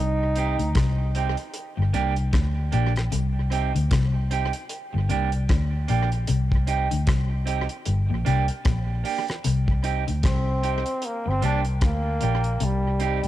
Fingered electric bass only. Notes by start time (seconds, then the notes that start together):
Already playing: C2
0.60 D2
0.76 C2
1.79 G1
1.95 C2
2.34 D2
2.74 A#1
3.13 C2
3.76 D2
3.92 C2
4.95 G1
5.11 C2
5.50 D2
5.90 A#1
6.30 C2
6.92 D2
7.08 C2
7.88 G1
8.11 A#1
8.27 C2
8.66 A#1
9.46 C2
10.09 D2
10.25 C2
11.27 G1
11.43 C2
11.83 D2
12.23 A#1
12.62 C2
13.25 D2